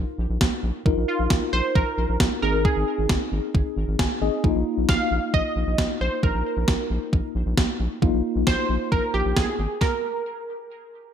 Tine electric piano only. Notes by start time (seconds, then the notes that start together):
Already playing: D#4 F4 A#4
0.86 D#4 F4 A#4
2.42 C4 D#4 G#4
3.99 G#5
4.22 C4 D#4 G#4 D#5
4.44 A#3 D#4 F4
8.02 A#3 D#4 F4